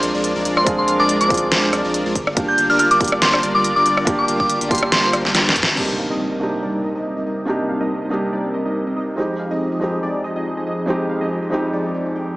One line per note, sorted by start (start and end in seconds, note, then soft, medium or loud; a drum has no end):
0.00 0.12 A#1 medium
0.00 0.12 G#3 medium
0.00 0.65 C4 medium
0.00 0.66 D4 medium
0.00 0.12 D4 medium
0.00 0.67 F4 medium
0.00 0.12 F4 medium
0.00 0.69 G#4 medium
0.00 0.12 A#4 medium
0.00 0.12 D5 medium
0.00 closed hi-hat medium
0.14 0.33 A#1 medium
0.14 0.33 G#3 medium
0.14 0.33 D4 medium
0.14 0.33 F4 medium
0.14 0.33 A#4 medium
0.14 0.33 D5 loud
0.24 closed hi-hat medium
0.36 0.43 A#1 loud
0.36 0.43 G#3 medium
0.36 0.43 D4 medium
0.36 0.43 F4 medium
0.36 0.43 A#4 medium
0.36 0.43 D5 medium
0.45 0.65 A#1 loud
0.45 0.64 G#3 medium
0.45 0.64 D4 medium
0.45 0.64 F4 medium
0.45 0.64 A#4 medium
0.45 0.64 D5 medium
0.45 closed hi-hat medium
0.57 0.70 C6 medium
0.57 cross-stick medium
0.65 0.86 A#1 loud
0.65 0.85 G#3 medium
0.65 1.27 C4 medium
0.65 1.28 D4 medium
0.65 0.85 D4 medium
0.65 1.28 F4 medium
0.65 0.85 A#4 medium
0.65 0.86 D5 loud
0.65 kick loud
0.65 closed hi-hat medium
0.69 1.29 G#4 loud
0.78 0.91 C6 medium
0.88 0.97 A#1 loud
0.88 0.98 G#3 medium
0.88 0.98 D4 medium
0.88 0.98 F4 medium
0.88 0.98 A#4 medium
0.88 0.98 F5 medium
0.88 closed hi-hat medium
0.99 1.18 A#1 loud
0.99 1.18 G#3 loud
0.99 1.18 D4 medium
0.99 1.18 F4 medium
0.99 1.18 A#4 medium
0.99 1.18 D5 loud
0.99 1.12 D6 medium
1.09 closed hi-hat medium
1.21 1.28 A#1 loud
1.21 1.28 G#3 medium
1.21 1.28 D4 medium
1.21 1.28 F4 medium
1.21 1.28 A#4 medium
1.21 1.28 D5 medium
1.21 1.80 D6 medium
1.21 closed hi-hat medium
1.28 1.50 A#1 loud
1.28 1.47 G#3 medium
1.28 2.13 C4 loud
1.28 2.14 D4 medium
1.28 1.47 D4 medium
1.28 1.47 F4 medium
1.28 2.15 F4 medium
1.28 1.47 A#4 medium
1.28 kick loud
1.28 closed hi-hat soft
1.32 2.15 G#4 loud
1.32 closed hi-hat medium
1.37 closed hi-hat medium
1.52 1.71 A#1 loud
1.52 1.71 G#3 loud
1.52 1.71 D4 medium
1.52 1.71 F4 medium
1.52 1.71 A#4 medium
1.52 1.71 C5 loud
1.52 snare loud
1.52 closed hi-hat medium
1.73 1.82 A#1 medium
1.73 1.82 G#3 medium
1.73 1.82 D4 medium
1.73 1.82 F4 medium
1.73 1.82 A#4 medium
1.73 1.82 D5 loud
1.73 cross-stick medium
1.73 closed hi-hat medium
1.85 2.04 A#1 loud
1.85 2.03 G#3 medium
1.85 2.03 D4 medium
1.85 2.03 F4 medium
1.85 2.03 A#4 medium
1.85 2.03 D5 loud
1.94 closed hi-hat medium
2.06 2.14 A#1 loud
2.06 2.13 G#3 medium
2.06 2.13 D4 medium
2.06 2.13 F4 medium
2.06 2.13 A#4 medium
2.06 2.13 D5 medium
2.15 2.35 G1 loud
2.15 2.34 G3 medium
2.15 2.34 D4 medium
2.15 2.34 F4 medium
2.15 2.34 A#4 medium
2.15 2.34 D5 medium
2.15 kick medium
2.15 closed hi-hat medium
2.27 cross-stick medium
2.35 2.56 G1 loud
2.35 2.56 G3 loud
2.35 2.97 A#3 medium
2.35 2.98 D4 medium
2.35 2.56 D4 medium
2.35 2.56 F4 medium
2.35 2.99 F4 medium
2.35 2.56 A#4 medium
2.35 2.56 D5 loud
2.35 kick loud
2.35 closed hi-hat medium
2.39 2.99 G4 medium
2.48 2.67 G6 medium
2.58 2.67 G1 loud
2.58 2.68 G3 medium
2.58 2.68 D4 medium
2.58 2.68 F4 medium
2.58 2.68 A#4 medium
2.58 2.68 F5 medium
2.58 closed hi-hat medium
2.70 2.89 G1 loud
2.70 2.88 G3 loud
2.70 2.88 D4 loud
2.70 2.88 F4 medium
2.70 2.88 A#4 loud
2.70 2.88 D5 loud
2.70 2.76 F6 medium
2.79 2.87 F6 medium
2.79 closed hi-hat medium
2.91 2.99 G1 loud
2.91 2.98 G3 medium
2.91 2.98 D4 medium
2.91 2.98 F4 medium
2.91 2.98 A#4 medium
2.91 2.98 D5 medium
2.91 2.97 D6 medium
2.91 closed hi-hat medium
2.99 3.20 G1 loud
2.99 3.17 G3 loud
2.99 4.04 A#3 medium
2.99 4.04 D4 medium
2.99 3.17 D4 medium
2.99 3.17 F4 medium
2.99 4.05 F4 medium
2.99 4.06 G4 medium
2.99 3.17 A#4 medium
2.99 3.17 D5 loud
2.99 3.08 D6 medium
2.99 kick loud
2.99 closed hi-hat soft
3.04 closed hi-hat medium
3.08 closed hi-hat medium
3.12 cross-stick medium
3.22 3.41 G1 loud
3.22 3.41 G3 loud
3.22 3.41 D4 medium
3.22 3.41 F4 medium
3.22 3.41 A#4 medium
3.22 3.41 C5 loud
3.22 3.29 C6 medium
3.22 snare loud
3.22 closed hi-hat medium
3.33 3.40 C6 medium
3.33 cross-stick medium
3.43 3.52 G1 loud
3.43 3.52 G3 medium
3.43 3.52 D4 medium
3.43 3.52 F4 medium
3.43 3.52 A#4 medium
3.43 3.52 D5 loud
3.43 closed hi-hat medium
3.55 3.74 G1 loud
3.55 3.73 G3 medium
3.55 3.73 D4 medium
3.55 3.73 F4 medium
3.55 3.73 A#4 medium
3.55 3.73 D5 loud
3.55 3.61 D6 medium
3.64 3.72 D6 medium
3.64 closed hi-hat medium
3.76 3.84 G1 loud
3.76 3.83 G3 medium
3.76 3.83 D4 medium
3.76 3.83 F4 medium
3.76 3.83 A#4 medium
3.76 3.83 D5 medium
3.76 3.89 D6 medium
3.86 4.05 G1 loud
3.86 4.05 G3 medium
3.86 4.05 D4 medium
3.86 4.05 F4 medium
3.86 4.05 A#4 medium
3.86 4.05 D5 medium
3.86 closed hi-hat medium
3.97 cross-stick medium
4.05 4.26 G1 loud
4.05 4.26 G3 medium
4.05 4.67 A#3 loud
4.05 4.68 D4 medium
4.05 4.26 D4 medium
4.05 4.26 F4 medium
4.05 4.69 F4 medium
4.05 4.26 A#4 medium
4.05 4.26 D5 loud
4.05 kick loud
4.05 closed hi-hat medium
4.09 4.70 G4 loud
4.19 4.31 D6 medium
4.28 4.38 G1 loud
4.28 4.38 G3 medium
4.28 4.38 D4 medium
4.28 4.38 F4 medium
4.28 4.38 A#4 medium
4.28 4.38 F5 medium
4.28 closed hi-hat medium
4.40 4.59 G1 loud
4.40 4.58 G3 loud
4.40 4.58 D4 medium
4.40 4.58 F4 medium
4.40 4.58 A#4 medium
4.40 4.58 D5 loud
4.40 4.69 D6 loud
4.40 kick medium
4.50 closed hi-hat medium
4.61 4.69 G1 loud
4.61 4.69 G3 medium
4.61 4.69 D4 medium
4.61 4.69 F4 medium
4.61 4.69 A#4 medium
4.61 4.68 D5 medium
4.61 closed hi-hat medium
4.69 4.90 G1 loud
4.69 4.88 G3 medium
4.69 5.74 A#3 medium
4.69 5.75 D4 medium
4.69 4.88 D4 medium
4.69 4.88 F4 medium
4.69 5.75 F4 medium
4.69 4.88 A#4 medium
4.69 4.88 D5 loud
4.69 4.85 C6 medium
4.69 kick loud
4.69 closed hi-hat soft
4.73 5.76 G4 loud
4.73 closed hi-hat medium
4.78 closed hi-hat medium
4.83 cross-stick medium
4.92 5.11 G1 loud
4.92 5.11 G3 loud
4.92 5.11 D4 medium
4.92 5.11 F4 medium
4.92 5.11 A#4 medium
4.92 5.11 C5 loud
4.92 5.00 C6 medium
4.92 snare loud
4.92 closed hi-hat medium
5.04 5.10 C6 medium
5.13 5.23 G1 loud
5.13 5.23 G3 medium
5.13 5.23 D4 medium
5.13 5.23 F4 medium
5.13 5.23 A#4 medium
5.13 5.23 C5 medium
5.13 cross-stick medium
5.13 closed hi-hat medium
5.25 5.33 G1 medium
5.25 5.32 G3 medium
5.25 5.32 D4 medium
5.25 5.32 F4 medium
5.25 5.32 A#4 medium
5.25 5.32 C5 medium
5.25 snare soft
5.35 5.54 G1 medium
5.35 5.54 G3 medium
5.35 5.54 D4 medium
5.35 5.54 F4 medium
5.35 5.54 A#4 medium
5.35 5.54 G5 medium
5.35 snare medium
5.35 closed hi-hat medium
5.49 snare medium
5.56 5.65 G2 loud
5.56 5.66 D4 medium
5.56 5.66 F4 medium
5.56 5.66 A#4 medium
5.56 5.66 F5 loud
5.56 kick medium
5.56 closed hi-hat medium
5.63 snare medium
5.68 5.75 G1 loud
5.68 5.75 G3 medium
5.68 5.75 D4 medium
5.68 5.75 F4 medium
5.68 5.75 A#4 medium
5.68 5.75 C5 loud
5.75 6.38 C3 medium
5.75 5.96 G3 medium
5.75 6.38 A#3 medium
5.75 5.96 C4 medium
5.75 6.39 D4 medium
5.75 5.96 D#4 medium
5.75 6.39 D#4 medium
5.75 6.40 G4 medium
5.75 5.96 A#4 medium
5.75 5.96 D#5 medium
5.75 crash medium
5.75 impact medium
5.99 6.08 G3 medium
5.99 6.08 C4 medium
5.99 6.08 D#4 medium
5.99 6.08 A#4 medium
5.99 6.08 F5 medium
6.10 6.29 G3 medium
6.10 6.29 C4 medium
6.10 6.29 D#4 medium
6.10 6.29 A#4 medium
6.10 6.29 D#5 loud
6.31 6.39 G3 medium
6.31 6.39 C4 medium
6.31 6.39 D#4 medium
6.31 6.39 A#4 medium
6.31 6.39 D#5 medium
6.39 7.44 C3 medium
6.39 6.58 G3 medium
6.39 7.45 A#3 medium
6.39 6.58 C4 medium
6.39 7.45 D4 medium
6.39 6.58 D#4 medium
6.39 7.46 D#4 medium
6.39 7.46 G4 medium
6.39 6.58 A#4 medium
6.39 6.58 D#5 medium
6.62 6.81 G3 medium
6.62 6.81 C4 medium
6.62 6.81 D#4 medium
6.62 6.81 A#4 medium
6.62 6.81 D5 loud
6.84 6.92 G3 medium
6.84 6.92 C4 medium
6.84 6.92 D#4 medium
6.84 6.92 A#4 medium
6.84 6.92 D#5 medium
6.95 7.14 G3 medium
6.95 7.14 C4 medium
6.95 7.14 D#4 medium
6.95 7.14 A#4 medium
6.95 7.14 D#5 medium
7.17 7.24 G3 medium
7.17 7.24 C4 medium
7.17 7.24 D#4 medium
7.17 7.24 A#4 medium
7.17 7.24 D#5 medium
7.26 7.45 G3 medium
7.26 7.45 C4 medium
7.26 7.45 D#4 medium
7.26 7.45 A#4 medium
7.26 7.45 D#5 medium
7.45 8.08 C3 medium
7.45 7.66 G3 medium
7.45 8.08 A#3 medium
7.45 7.66 C4 medium
7.45 8.09 D4 medium
7.45 7.66 D#4 medium
7.45 8.09 D#4 medium
7.45 8.10 G4 medium
7.45 7.66 A#4 medium
7.45 7.66 D#5 medium
7.69 7.79 G3 medium
7.69 7.79 C4 medium
7.69 7.79 D#4 medium
7.69 7.79 A#4 medium
7.69 7.79 F5 medium
7.80 7.99 G3 medium
7.80 7.99 C4 medium
7.80 7.99 D#4 medium
7.80 7.99 A#4 medium
7.80 7.99 D#5 loud
8.02 8.09 G3 medium
8.02 8.09 C4 medium
8.02 8.09 D#4 medium
8.02 8.09 A#4 medium
8.02 8.09 D#5 medium
8.09 9.14 C3 medium
8.09 8.28 G3 medium
8.09 9.15 A#3 medium
8.09 8.28 C4 medium
8.09 9.15 D4 medium
8.09 8.28 D#4 medium
8.09 9.16 D#4 medium
8.09 9.16 G4 medium
8.09 8.28 A#4 medium
8.09 8.28 D#5 loud
8.33 8.52 G3 medium
8.33 8.52 C4 medium
8.33 8.52 D#4 medium
8.33 8.52 A#4 medium
8.33 8.52 D5 medium
8.54 8.63 G3 medium
8.54 8.63 C4 medium
8.54 8.63 D#4 medium
8.54 8.63 A#4 medium
8.54 8.63 D#5 medium
8.65 8.84 G3 medium
8.65 8.84 C4 medium
8.65 8.84 D#4 medium
8.65 8.84 A#4 medium
8.65 8.84 D#5 medium
8.87 8.94 G3 medium
8.87 8.94 C4 medium
8.87 8.94 D#4 medium
8.87 8.94 A#4 medium
8.87 8.94 D#5 medium
8.96 9.15 G3 medium
8.96 9.15 C4 medium
8.96 9.15 D#4 medium
8.96 9.15 A#4 medium
8.96 9.15 D#5 medium
9.16 9.78 F2 medium
9.16 9.37 F3 medium
9.16 9.79 G#3 medium
9.16 9.37 C4 medium
9.16 9.79 C4 medium
9.16 9.37 D#4 medium
9.16 9.80 D#4 medium
9.16 9.37 G#4 medium
9.16 9.37 D#5 medium
9.20 9.80 G4 medium
9.39 9.49 F3 medium
9.39 9.49 C4 medium
9.39 9.49 D#4 medium
9.39 9.49 G#4 medium
9.39 9.49 F5 medium
9.51 9.69 F3 medium
9.51 9.69 C4 medium
9.51 9.69 D#4 medium
9.51 9.69 G#4 medium
9.51 9.69 D#5 loud
9.72 9.79 F3 medium
9.72 9.79 C4 medium
9.72 9.79 D#4 medium
9.72 9.79 G#4 medium
9.72 9.79 D#5 medium
9.79 10.84 F2 medium
9.79 9.98 F3 medium
9.79 10.85 G#3 medium
9.79 10.86 C4 medium
9.79 9.98 C4 medium
9.79 9.98 D#4 medium
9.79 10.86 D#4 medium
9.79 10.87 G4 medium
9.79 9.98 G#4 medium
9.79 9.98 D#5 medium
10.03 10.22 F3 medium
10.03 10.22 C4 medium
10.03 10.22 D#4 medium
10.03 10.22 G#4 medium
10.03 10.22 D5 loud
10.24 10.33 F3 medium
10.24 10.33 C4 medium
10.24 10.33 D#4 medium
10.24 10.33 G#4 medium
10.24 10.33 D#5 medium
10.36 10.54 F3 medium
10.36 10.54 C4 medium
10.36 10.54 D#4 medium
10.36 10.54 G#4 medium
10.36 10.54 D#5 medium
10.57 10.64 F3 medium
10.57 10.64 C4 medium
10.57 10.64 D#4 medium
10.57 10.64 G#4 medium
10.57 10.64 D#5 medium
10.67 10.86 F3 medium
10.67 10.86 C4 medium
10.67 10.86 D#4 medium
10.67 10.86 G#4 medium
10.67 10.86 D#5 medium
10.86 11.48 F2 medium
10.86 11.07 F3 medium
10.86 11.49 G#3 medium
10.86 11.49 C4 medium
10.86 11.07 C4 medium
10.86 11.07 D#4 medium
10.86 11.50 D#4 medium
10.86 11.07 G#4 medium
10.86 11.07 D#5 medium
10.90 11.50 G4 medium
11.09 11.19 F3 medium
11.09 11.19 C4 medium
11.09 11.19 D#4 medium
11.09 11.19 G#4 medium
11.09 11.19 F5 medium
11.21 11.39 F3 loud
11.21 11.39 C4 medium
11.21 11.39 D#4 medium
11.21 11.39 G#4 medium
11.21 11.39 D#5 loud
11.42 11.49 F3 medium
11.42 11.49 C4 medium
11.42 11.49 D#4 medium
11.42 11.49 G#4 medium
11.42 11.49 D#5 medium
11.50 12.35 F2 medium
11.50 11.69 F3 medium
11.50 12.35 G#3 medium
11.50 12.36 C4 medium
11.50 11.69 C4 medium
11.50 11.69 D#4 medium
11.50 12.36 D#4 medium
11.50 12.37 G4 medium
11.50 11.69 G#4 medium
11.50 11.69 D#5 medium
11.73 11.92 F3 medium
11.73 11.92 C4 medium
11.73 11.92 D#4 medium
11.73 11.92 G#4 medium
11.73 11.92 D5 loud
11.94 12.04 F3 medium
11.94 12.04 C4 medium
11.94 12.04 D#4 medium
11.94 12.04 G#4 medium
11.94 12.04 D5 medium
12.06 12.13 F3 medium
12.06 12.13 C4 medium
12.06 12.13 D#4 medium
12.06 12.13 G#4 medium
12.06 12.13 D5 medium
12.15 12.34 F3 medium
12.15 12.35 C4 medium
12.15 12.34 D#4 medium
12.15 12.34 G#4 medium
12.15 12.34 G5 medium